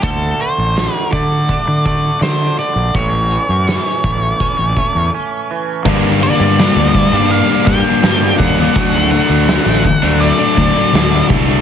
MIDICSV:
0, 0, Header, 1, 8, 480
1, 0, Start_track
1, 0, Key_signature, -2, "minor"
1, 0, Tempo, 726392
1, 20, Time_signature, 4, 2, 24, 8
1, 7674, End_track
2, 0, Start_track
2, 0, Title_t, "Lead electric guitar"
2, 0, Program_c, 0, 29
2, 22, Note_on_c, 0, 69, 87
2, 269, Note_off_c, 0, 69, 0
2, 270, Note_on_c, 0, 72, 98
2, 633, Note_off_c, 0, 72, 0
2, 633, Note_on_c, 0, 70, 98
2, 740, Note_off_c, 0, 70, 0
2, 743, Note_on_c, 0, 74, 92
2, 1223, Note_off_c, 0, 74, 0
2, 1231, Note_on_c, 0, 74, 91
2, 1453, Note_off_c, 0, 74, 0
2, 1470, Note_on_c, 0, 72, 95
2, 1693, Note_off_c, 0, 72, 0
2, 1710, Note_on_c, 0, 74, 82
2, 1951, Note_off_c, 0, 74, 0
2, 1954, Note_on_c, 0, 73, 87
2, 3369, Note_off_c, 0, 73, 0
2, 4117, Note_on_c, 0, 74, 92
2, 4831, Note_on_c, 0, 77, 102
2, 4856, Note_off_c, 0, 74, 0
2, 5055, Note_off_c, 0, 77, 0
2, 5066, Note_on_c, 0, 79, 115
2, 5522, Note_off_c, 0, 79, 0
2, 5541, Note_on_c, 0, 78, 103
2, 6015, Note_off_c, 0, 78, 0
2, 6023, Note_on_c, 0, 78, 108
2, 6743, Note_on_c, 0, 74, 80
2, 6765, Note_off_c, 0, 78, 0
2, 7435, Note_off_c, 0, 74, 0
2, 7674, End_track
3, 0, Start_track
3, 0, Title_t, "Clean electric guitar"
3, 0, Program_c, 1, 27
3, 20, Note_on_c, 1, 50, 64
3, 264, Note_on_c, 1, 57, 60
3, 498, Note_off_c, 1, 50, 0
3, 506, Note_on_c, 1, 50, 64
3, 738, Note_off_c, 1, 57, 0
3, 746, Note_on_c, 1, 57, 62
3, 995, Note_on_c, 1, 62, 63
3, 1225, Note_off_c, 1, 57, 0
3, 1233, Note_on_c, 1, 57, 64
3, 1463, Note_off_c, 1, 62, 0
3, 1471, Note_on_c, 1, 62, 61
3, 1709, Note_off_c, 1, 50, 0
3, 1717, Note_on_c, 1, 50, 64
3, 1951, Note_off_c, 1, 62, 0
3, 1952, Note_off_c, 1, 57, 0
3, 1953, Note_off_c, 1, 50, 0
3, 1957, Note_on_c, 1, 45, 60
3, 2195, Note_on_c, 1, 52, 60
3, 2424, Note_off_c, 1, 52, 0
3, 2432, Note_on_c, 1, 52, 66
3, 2678, Note_on_c, 1, 57, 64
3, 2917, Note_on_c, 1, 61, 65
3, 3146, Note_off_c, 1, 57, 0
3, 3154, Note_on_c, 1, 57, 60
3, 3157, Note_off_c, 1, 45, 0
3, 3392, Note_off_c, 1, 61, 0
3, 3400, Note_on_c, 1, 61, 68
3, 3631, Note_off_c, 1, 52, 0
3, 3639, Note_on_c, 1, 52, 59
3, 3874, Note_off_c, 1, 57, 0
3, 3876, Note_off_c, 1, 52, 0
3, 3877, Note_off_c, 1, 61, 0
3, 7674, End_track
4, 0, Start_track
4, 0, Title_t, "Distorted electric guitar"
4, 0, Program_c, 2, 30
4, 3866, Note_on_c, 2, 43, 82
4, 3873, Note_on_c, 2, 50, 90
4, 3878, Note_on_c, 2, 55, 94
4, 3883, Note_on_c, 2, 58, 102
4, 3889, Note_on_c, 2, 62, 96
4, 4097, Note_off_c, 2, 50, 0
4, 4105, Note_on_c, 2, 50, 80
4, 4106, Note_off_c, 2, 55, 0
4, 4113, Note_off_c, 2, 58, 0
4, 4114, Note_on_c, 2, 55, 87
4, 4121, Note_on_c, 2, 58, 91
4, 4124, Note_off_c, 2, 62, 0
4, 4127, Note_on_c, 2, 62, 92
4, 4343, Note_off_c, 2, 43, 0
4, 4347, Note_off_c, 2, 50, 0
4, 4351, Note_on_c, 2, 43, 87
4, 4353, Note_off_c, 2, 55, 0
4, 4355, Note_on_c, 2, 50, 95
4, 4358, Note_off_c, 2, 58, 0
4, 4361, Note_on_c, 2, 55, 102
4, 4366, Note_on_c, 2, 58, 101
4, 4369, Note_off_c, 2, 62, 0
4, 4371, Note_on_c, 2, 62, 97
4, 4464, Note_off_c, 2, 62, 0
4, 4467, Note_on_c, 2, 62, 83
4, 4470, Note_off_c, 2, 58, 0
4, 4478, Note_on_c, 2, 58, 73
4, 4479, Note_off_c, 2, 55, 0
4, 4487, Note_on_c, 2, 55, 62
4, 4593, Note_off_c, 2, 50, 0
4, 4596, Note_off_c, 2, 55, 0
4, 4598, Note_off_c, 2, 58, 0
4, 4604, Note_off_c, 2, 62, 0
4, 4712, Note_off_c, 2, 43, 0
4, 4717, Note_on_c, 2, 62, 68
4, 4726, Note_on_c, 2, 58, 63
4, 4735, Note_on_c, 2, 55, 59
4, 4949, Note_off_c, 2, 62, 0
4, 4952, Note_on_c, 2, 62, 74
4, 4955, Note_off_c, 2, 58, 0
4, 4962, Note_off_c, 2, 55, 0
4, 4963, Note_on_c, 2, 58, 68
4, 4970, Note_on_c, 2, 55, 61
4, 5181, Note_off_c, 2, 62, 0
4, 5184, Note_on_c, 2, 62, 69
4, 5188, Note_off_c, 2, 58, 0
4, 5196, Note_on_c, 2, 58, 76
4, 5200, Note_off_c, 2, 55, 0
4, 5208, Note_on_c, 2, 55, 69
4, 5308, Note_on_c, 2, 43, 102
4, 5312, Note_off_c, 2, 55, 0
4, 5316, Note_on_c, 2, 50, 107
4, 5319, Note_off_c, 2, 58, 0
4, 5320, Note_on_c, 2, 55, 99
4, 5327, Note_on_c, 2, 58, 104
4, 5329, Note_off_c, 2, 62, 0
4, 5331, Note_on_c, 2, 62, 114
4, 5431, Note_off_c, 2, 62, 0
4, 5432, Note_off_c, 2, 58, 0
4, 5433, Note_on_c, 2, 62, 74
4, 5440, Note_on_c, 2, 58, 61
4, 5443, Note_off_c, 2, 55, 0
4, 5451, Note_on_c, 2, 55, 54
4, 5542, Note_off_c, 2, 50, 0
4, 5547, Note_off_c, 2, 55, 0
4, 5550, Note_on_c, 2, 50, 73
4, 5554, Note_off_c, 2, 58, 0
4, 5555, Note_on_c, 2, 55, 78
4, 5562, Note_on_c, 2, 58, 75
4, 5565, Note_off_c, 2, 62, 0
4, 5568, Note_on_c, 2, 62, 87
4, 5669, Note_off_c, 2, 43, 0
4, 5671, Note_off_c, 2, 62, 0
4, 5673, Note_on_c, 2, 62, 76
4, 5676, Note_off_c, 2, 58, 0
4, 5684, Note_off_c, 2, 55, 0
4, 5684, Note_on_c, 2, 58, 80
4, 5692, Note_on_c, 2, 55, 61
4, 5775, Note_off_c, 2, 50, 0
4, 5783, Note_off_c, 2, 58, 0
4, 5787, Note_off_c, 2, 55, 0
4, 5792, Note_on_c, 2, 50, 89
4, 5799, Note_on_c, 2, 54, 93
4, 5805, Note_on_c, 2, 57, 92
4, 5810, Note_off_c, 2, 62, 0
4, 5812, Note_on_c, 2, 62, 94
4, 6023, Note_off_c, 2, 50, 0
4, 6030, Note_off_c, 2, 54, 0
4, 6031, Note_on_c, 2, 50, 81
4, 6033, Note_off_c, 2, 57, 0
4, 6038, Note_on_c, 2, 54, 82
4, 6041, Note_on_c, 2, 57, 85
4, 6046, Note_off_c, 2, 62, 0
4, 6048, Note_on_c, 2, 62, 88
4, 6262, Note_off_c, 2, 50, 0
4, 6269, Note_on_c, 2, 50, 101
4, 6271, Note_off_c, 2, 54, 0
4, 6277, Note_off_c, 2, 57, 0
4, 6279, Note_on_c, 2, 54, 103
4, 6285, Note_on_c, 2, 57, 103
4, 6287, Note_off_c, 2, 62, 0
4, 6289, Note_on_c, 2, 62, 107
4, 6384, Note_off_c, 2, 62, 0
4, 6387, Note_on_c, 2, 62, 83
4, 6389, Note_off_c, 2, 57, 0
4, 6397, Note_on_c, 2, 57, 81
4, 6398, Note_off_c, 2, 54, 0
4, 6406, Note_on_c, 2, 54, 58
4, 6505, Note_off_c, 2, 50, 0
4, 6505, Note_off_c, 2, 54, 0
4, 6511, Note_off_c, 2, 57, 0
4, 6514, Note_off_c, 2, 62, 0
4, 6621, Note_on_c, 2, 62, 77
4, 6632, Note_on_c, 2, 57, 58
4, 6640, Note_on_c, 2, 54, 56
4, 6859, Note_off_c, 2, 62, 0
4, 6862, Note_on_c, 2, 62, 76
4, 6866, Note_off_c, 2, 57, 0
4, 6872, Note_off_c, 2, 54, 0
4, 6874, Note_on_c, 2, 57, 75
4, 6880, Note_on_c, 2, 54, 61
4, 7103, Note_off_c, 2, 62, 0
4, 7106, Note_on_c, 2, 62, 75
4, 7109, Note_off_c, 2, 57, 0
4, 7117, Note_on_c, 2, 57, 67
4, 7119, Note_off_c, 2, 54, 0
4, 7127, Note_on_c, 2, 54, 68
4, 7219, Note_on_c, 2, 50, 105
4, 7222, Note_off_c, 2, 54, 0
4, 7227, Note_off_c, 2, 57, 0
4, 7230, Note_on_c, 2, 54, 113
4, 7235, Note_on_c, 2, 57, 108
4, 7239, Note_off_c, 2, 62, 0
4, 7242, Note_on_c, 2, 62, 107
4, 7341, Note_off_c, 2, 62, 0
4, 7344, Note_on_c, 2, 62, 71
4, 7346, Note_off_c, 2, 57, 0
4, 7354, Note_on_c, 2, 57, 67
4, 7359, Note_off_c, 2, 54, 0
4, 7367, Note_on_c, 2, 54, 64
4, 7456, Note_off_c, 2, 50, 0
4, 7462, Note_off_c, 2, 54, 0
4, 7464, Note_on_c, 2, 50, 75
4, 7470, Note_off_c, 2, 57, 0
4, 7470, Note_on_c, 2, 54, 83
4, 7478, Note_on_c, 2, 57, 75
4, 7479, Note_off_c, 2, 62, 0
4, 7482, Note_on_c, 2, 62, 83
4, 7582, Note_off_c, 2, 62, 0
4, 7584, Note_on_c, 2, 62, 70
4, 7585, Note_off_c, 2, 57, 0
4, 7593, Note_on_c, 2, 57, 75
4, 7595, Note_off_c, 2, 54, 0
4, 7603, Note_on_c, 2, 54, 63
4, 7674, Note_off_c, 2, 50, 0
4, 7674, Note_off_c, 2, 54, 0
4, 7674, Note_off_c, 2, 57, 0
4, 7674, Note_off_c, 2, 62, 0
4, 7674, End_track
5, 0, Start_track
5, 0, Title_t, "Distorted electric guitar"
5, 0, Program_c, 3, 30
5, 5061, Note_on_c, 3, 50, 87
5, 5069, Note_on_c, 3, 55, 74
5, 5074, Note_on_c, 3, 58, 86
5, 5080, Note_on_c, 3, 62, 84
5, 5295, Note_off_c, 3, 50, 0
5, 5300, Note_off_c, 3, 55, 0
5, 5303, Note_off_c, 3, 58, 0
5, 5314, Note_off_c, 3, 62, 0
5, 6979, Note_on_c, 3, 50, 77
5, 6985, Note_on_c, 3, 54, 86
5, 6989, Note_on_c, 3, 57, 82
5, 6996, Note_on_c, 3, 62, 88
5, 7207, Note_off_c, 3, 50, 0
5, 7213, Note_off_c, 3, 54, 0
5, 7219, Note_off_c, 3, 57, 0
5, 7229, Note_off_c, 3, 62, 0
5, 7674, End_track
6, 0, Start_track
6, 0, Title_t, "Fingered electric bass"
6, 0, Program_c, 4, 33
6, 20, Note_on_c, 4, 38, 92
6, 205, Note_off_c, 4, 38, 0
6, 383, Note_on_c, 4, 33, 77
6, 567, Note_off_c, 4, 33, 0
6, 744, Note_on_c, 4, 50, 76
6, 1021, Note_off_c, 4, 50, 0
6, 1109, Note_on_c, 4, 50, 78
6, 1385, Note_off_c, 4, 50, 0
6, 1462, Note_on_c, 4, 50, 81
6, 1648, Note_off_c, 4, 50, 0
6, 1820, Note_on_c, 4, 34, 81
6, 1916, Note_off_c, 4, 34, 0
6, 1946, Note_on_c, 4, 33, 95
6, 2224, Note_off_c, 4, 33, 0
6, 2305, Note_on_c, 4, 42, 76
6, 2492, Note_off_c, 4, 42, 0
6, 2668, Note_on_c, 4, 33, 85
6, 2854, Note_off_c, 4, 33, 0
6, 3031, Note_on_c, 4, 33, 78
6, 3124, Note_off_c, 4, 33, 0
6, 3270, Note_on_c, 4, 40, 71
6, 3363, Note_off_c, 4, 40, 0
6, 3866, Note_on_c, 4, 43, 101
6, 4145, Note_off_c, 4, 43, 0
6, 4229, Note_on_c, 4, 43, 84
6, 4414, Note_off_c, 4, 43, 0
6, 4467, Note_on_c, 4, 38, 86
6, 4653, Note_off_c, 4, 38, 0
6, 4707, Note_on_c, 4, 43, 84
6, 4893, Note_off_c, 4, 43, 0
6, 5067, Note_on_c, 4, 43, 103
6, 5161, Note_off_c, 4, 43, 0
6, 5306, Note_on_c, 4, 43, 92
6, 5492, Note_off_c, 4, 43, 0
6, 5548, Note_on_c, 4, 39, 107
6, 5733, Note_off_c, 4, 39, 0
6, 5787, Note_on_c, 4, 38, 95
6, 6064, Note_off_c, 4, 38, 0
6, 6141, Note_on_c, 4, 38, 88
6, 6328, Note_off_c, 4, 38, 0
6, 6382, Note_on_c, 4, 33, 83
6, 6568, Note_off_c, 4, 33, 0
6, 6625, Note_on_c, 4, 38, 79
6, 6809, Note_off_c, 4, 38, 0
6, 6985, Note_on_c, 4, 38, 101
6, 7077, Note_off_c, 4, 38, 0
6, 7225, Note_on_c, 4, 38, 97
6, 7408, Note_off_c, 4, 38, 0
6, 7466, Note_on_c, 4, 36, 112
6, 7649, Note_off_c, 4, 36, 0
6, 7674, End_track
7, 0, Start_track
7, 0, Title_t, "Muted distorted electric guitar strokes"
7, 4601, Note_on_c, 9, 29, 47
7, 4667, Note_off_c, 9, 29, 0
7, 6513, Note_on_c, 9, 29, 43
7, 6579, Note_off_c, 9, 29, 0
7, 7674, End_track
8, 0, Start_track
8, 0, Title_t, "Drums"
8, 19, Note_on_c, 9, 42, 75
8, 21, Note_on_c, 9, 36, 109
8, 85, Note_off_c, 9, 42, 0
8, 87, Note_off_c, 9, 36, 0
8, 264, Note_on_c, 9, 42, 60
8, 330, Note_off_c, 9, 42, 0
8, 505, Note_on_c, 9, 42, 67
8, 513, Note_on_c, 9, 38, 95
8, 571, Note_off_c, 9, 42, 0
8, 579, Note_off_c, 9, 38, 0
8, 744, Note_on_c, 9, 36, 82
8, 747, Note_on_c, 9, 42, 61
8, 810, Note_off_c, 9, 36, 0
8, 813, Note_off_c, 9, 42, 0
8, 984, Note_on_c, 9, 42, 74
8, 985, Note_on_c, 9, 36, 73
8, 1051, Note_off_c, 9, 36, 0
8, 1051, Note_off_c, 9, 42, 0
8, 1226, Note_on_c, 9, 36, 81
8, 1227, Note_on_c, 9, 42, 59
8, 1292, Note_off_c, 9, 36, 0
8, 1293, Note_off_c, 9, 42, 0
8, 1468, Note_on_c, 9, 42, 75
8, 1476, Note_on_c, 9, 38, 84
8, 1534, Note_off_c, 9, 42, 0
8, 1542, Note_off_c, 9, 38, 0
8, 1709, Note_on_c, 9, 42, 67
8, 1775, Note_off_c, 9, 42, 0
8, 1947, Note_on_c, 9, 36, 98
8, 1948, Note_on_c, 9, 42, 90
8, 2014, Note_off_c, 9, 36, 0
8, 2014, Note_off_c, 9, 42, 0
8, 2186, Note_on_c, 9, 42, 62
8, 2252, Note_off_c, 9, 42, 0
8, 2428, Note_on_c, 9, 42, 76
8, 2436, Note_on_c, 9, 38, 96
8, 2495, Note_off_c, 9, 42, 0
8, 2502, Note_off_c, 9, 38, 0
8, 2668, Note_on_c, 9, 42, 66
8, 2669, Note_on_c, 9, 36, 80
8, 2734, Note_off_c, 9, 42, 0
8, 2735, Note_off_c, 9, 36, 0
8, 2908, Note_on_c, 9, 42, 69
8, 2910, Note_on_c, 9, 36, 70
8, 2974, Note_off_c, 9, 42, 0
8, 2976, Note_off_c, 9, 36, 0
8, 3147, Note_on_c, 9, 42, 56
8, 3149, Note_on_c, 9, 36, 83
8, 3213, Note_off_c, 9, 42, 0
8, 3215, Note_off_c, 9, 36, 0
8, 3868, Note_on_c, 9, 46, 85
8, 3869, Note_on_c, 9, 36, 113
8, 3934, Note_off_c, 9, 46, 0
8, 3935, Note_off_c, 9, 36, 0
8, 4111, Note_on_c, 9, 46, 67
8, 4177, Note_off_c, 9, 46, 0
8, 4351, Note_on_c, 9, 46, 71
8, 4358, Note_on_c, 9, 38, 110
8, 4417, Note_off_c, 9, 46, 0
8, 4425, Note_off_c, 9, 38, 0
8, 4589, Note_on_c, 9, 46, 66
8, 4590, Note_on_c, 9, 36, 93
8, 4655, Note_off_c, 9, 46, 0
8, 4656, Note_off_c, 9, 36, 0
8, 4828, Note_on_c, 9, 46, 84
8, 4895, Note_off_c, 9, 46, 0
8, 5066, Note_on_c, 9, 46, 67
8, 5068, Note_on_c, 9, 36, 85
8, 5074, Note_on_c, 9, 38, 34
8, 5132, Note_off_c, 9, 46, 0
8, 5134, Note_off_c, 9, 36, 0
8, 5140, Note_off_c, 9, 38, 0
8, 5303, Note_on_c, 9, 46, 83
8, 5311, Note_on_c, 9, 38, 114
8, 5369, Note_off_c, 9, 46, 0
8, 5377, Note_off_c, 9, 38, 0
8, 5546, Note_on_c, 9, 46, 73
8, 5548, Note_on_c, 9, 36, 99
8, 5612, Note_off_c, 9, 46, 0
8, 5614, Note_off_c, 9, 36, 0
8, 5783, Note_on_c, 9, 46, 98
8, 5787, Note_on_c, 9, 36, 121
8, 5849, Note_off_c, 9, 46, 0
8, 5853, Note_off_c, 9, 36, 0
8, 5916, Note_on_c, 9, 38, 31
8, 5982, Note_off_c, 9, 38, 0
8, 6025, Note_on_c, 9, 46, 69
8, 6091, Note_off_c, 9, 46, 0
8, 6263, Note_on_c, 9, 46, 85
8, 6271, Note_on_c, 9, 38, 110
8, 6329, Note_off_c, 9, 46, 0
8, 6337, Note_off_c, 9, 38, 0
8, 6504, Note_on_c, 9, 46, 68
8, 6507, Note_on_c, 9, 36, 94
8, 6570, Note_off_c, 9, 46, 0
8, 6573, Note_off_c, 9, 36, 0
8, 6750, Note_on_c, 9, 46, 72
8, 6816, Note_off_c, 9, 46, 0
8, 6987, Note_on_c, 9, 46, 55
8, 6988, Note_on_c, 9, 36, 91
8, 7053, Note_off_c, 9, 46, 0
8, 7054, Note_off_c, 9, 36, 0
8, 7230, Note_on_c, 9, 46, 78
8, 7238, Note_on_c, 9, 38, 116
8, 7296, Note_off_c, 9, 46, 0
8, 7304, Note_off_c, 9, 38, 0
8, 7468, Note_on_c, 9, 36, 97
8, 7469, Note_on_c, 9, 46, 61
8, 7534, Note_off_c, 9, 36, 0
8, 7535, Note_off_c, 9, 46, 0
8, 7674, End_track
0, 0, End_of_file